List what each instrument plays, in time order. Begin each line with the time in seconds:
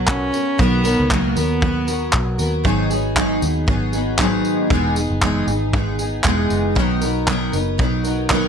Already playing: fingered electric bass B1, cello F#3, steel-string acoustic guitar F#3 B3 F#4 A#4
0.08 cello C#4, kick, clap
0.32 steel-string acoustic guitar F#3 B3 F#4 A#4, tambourine
0.58 fingered electric bass B1, steel-string acoustic guitar B2 D#3 F#3 B3 F#4 A#4, cello B3, kick
0.84 steel-string acoustic guitar B2 D#3 F#3 B3 F#4 A#4, tambourine
1.00 fingered electric bass C#2
1.10 steel-string acoustic guitar B2 D#3 F#3 B3 F#4 A#4, cello A#3, kick, clap
1.36 fingered electric bass D#2, steel-string acoustic guitar F#3 B3 F#4 A#4, cello B3, tambourine
1.61 steel-string acoustic guitar F#3 B3 F#4 A#4, kick
1.87 steel-string acoustic guitar F#3 B3 F#4 A#4, tambourine
2.13 fingered electric bass B1, kick, clap
2.38 fingered electric bass D#2, steel-string acoustic guitar F#3 B3 F#4 A#4, tambourine
2.64 fingered electric bass G#1, steel-string acoustic guitar G#2 D#3 F#3 B3 D#4 G#4, kick
2.90 steel-string acoustic guitar F#3 B3 D#4 G#4, tambourine
3.16 steel-string acoustic guitar G#2 D#3 F#3 B3 D#4 G#4, kick, clap
3.41 fingered electric bass D#2, steel-string acoustic guitar F#3 B3 D#4 G#4, tambourine
3.67 fingered electric bass G#1, steel-string acoustic guitar F#3 B3 D#4 G#4, kick
3.92 steel-string acoustic guitar F#3 B3 D#4 G#4, tambourine
4.18 steel-string acoustic guitar G#2 D#3 F#3 B3 D#4 G#4, kick, clap
4.45 tambourine
4.70 fingered electric bass E1, steel-string acoustic guitar E3 G#3 B3 D#4 G#4, kick
4.96 steel-string acoustic guitar B3 D#4 G#4, tambourine
5.10 fingered electric bass F#1
5.22 steel-string acoustic guitar E3 G#3 B3 D#4 G#4, kick, clap
5.47 fingered electric bass G#1, steel-string acoustic guitar B3 D#4 G#4, tambourine
5.73 steel-string acoustic guitar G#3 B3 D#4 G#4, kick
5.99 steel-string acoustic guitar B3 D#4 G#4, tambourine
6.24 fingered electric bass E1, steel-string acoustic guitar E3 G#3 B3 D#4 G#4, kick, clap
6.50 fingered electric bass F#1, tambourine
6.75 fingered electric bass B1, steel-string acoustic guitar B2 D#3 F#3 B3 D#4 A#4, kick
7.01 steel-string acoustic guitar F#3 B3 D#4 A#4, tambourine
7.27 steel-string acoustic guitar B2 D#3 F#3 B3 D#4 A#4, kick, clap
7.52 fingered electric bass F#1, steel-string acoustic guitar F#3 B3 D#4 A#4, tambourine
7.78 fingered electric bass B1, steel-string acoustic guitar F#3 B3 D#4 A#4, kick
8.04 steel-string acoustic guitar F#3 B3 D#4 A#4, tambourine
8.30 steel-string acoustic guitar B2 D#3 F#3 B3 D#4 A#4, kick, clap